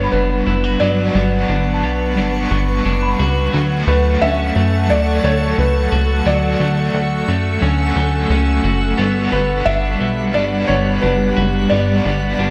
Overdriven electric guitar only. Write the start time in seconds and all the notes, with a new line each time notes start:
Already playing: G3 B3 D4 F#4
0.80 G3 B3 D4
0.84 F#4
1.13 D4 F#4
1.19 B3
2.13 G3
2.18 B3
2.22 D4 F#4
3.52 D3 F#3 A3 C#4
3.57 F#4
3.86 C#4 F#4
3.92 A3
4.86 F#3
4.91 A3
4.99 F#4
6.26 D3 F#3 A3 F#4
6.58 F#4
6.64 A3
7.59 F#3
7.64 A3
7.68 C#4 F#4
8.98 G3 B3 D4
9.02 F#4
9.32 D4 F#4
9.37 B3
10.31 G3
10.37 B3 D4
10.44 F#4
11.70 G3 B3 D4
11.74 F#4
12.04 D4 F#4
12.10 B3